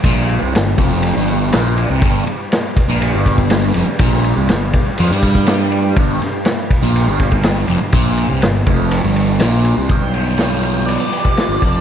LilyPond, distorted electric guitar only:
\new Staff \with { instrumentName = "Distorted electric guitar" } { \clef bass \time 4/4 \key f \lydian \tempo 4 = 122 bes,8. c16 g,8 f,8. g,8. bes,8. c16 | g,8 r4 r16 bes,8 g,4~ g,16 f,16 r16 | bes,8. c16 g,8 r8 f16 g4.~ g16 | g,8 r4 r16 bes,8 g,4~ g,16 f,16 r16 |
bes,8. c16 g,8 f,8. g,8. bes,8. c16 | g,8 b8 f'8 f8 b8 g'8 f'8 f8 | }